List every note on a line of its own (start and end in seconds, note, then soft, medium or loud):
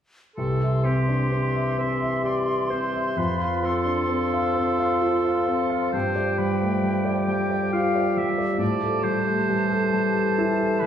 0.36 3.13 C2 soft
0.36 3.14 E3 soft
0.36 3.14 G4 soft
0.36 0.86 A4 soft
0.36 5.89 C6 soft
0.62 0.99 E5 soft
0.84 1.22 C4 soft
0.84 1.78 G4 soft
1.09 1.32 D4 soft
1.32 1.70 C4 soft
1.54 1.92 E5 soft
1.78 2.16 C4 soft
1.78 2.24 E5 soft
2.01 2.39 E5 soft
2.23 2.62 G4 soft
2.23 2.71 D5 soft
2.46 2.84 E5 soft
2.70 3.07 C4 soft
2.70 3.19 C5 soft
2.93 3.17 E5 soft
3.16 5.90 F2 soft
3.16 9.18 F3 soft
3.16 5.97 F4 soft
3.16 3.66 B4 soft
3.39 3.77 F5 soft
3.63 4.00 C4 soft
3.63 5.92 A4 medium
3.85 4.09 D4 soft
4.09 4.47 C4 soft
4.33 4.71 F5 soft
4.56 4.93 C4 soft
4.79 5.16 F5 soft
5.02 5.39 F4 soft
5.25 5.62 F5 soft
5.48 5.85 C4 soft
5.70 5.93 F5 soft
5.92 8.56 G2 soft
5.92 10.87 G4 soft
5.92 6.40 C5 medium
5.92 8.30 G5 soft
6.16 6.53 D5 soft
6.38 6.75 G3 soft
6.38 7.11 B4 soft
6.61 6.84 A3 soft
6.84 7.20 G3 soft
7.05 7.41 D5 soft
7.28 7.64 G3 soft
7.28 7.72 G5 medium
7.50 7.86 D5 soft
7.73 8.08 F4 soft
7.73 8.19 F5 medium
7.95 8.30 D5 soft
8.17 8.52 G3 soft
8.17 8.59 E5 medium
8.38 8.60 D5 soft
8.58 10.87 A2 soft
8.58 9.05 D5 medium
8.58 10.87 A5 soft
8.82 9.18 A4 soft
9.03 9.40 G3 soft
9.03 10.81 C5 medium
9.27 9.49 A3 soft
9.49 10.87 E3 soft
9.49 9.84 G3 soft
9.70 10.06 A4 soft
9.93 10.29 G3 soft
10.15 10.51 A4 soft
10.38 10.73 E4 soft
10.60 10.87 A4 soft
10.80 10.87 G3 soft
10.80 10.87 B4 medium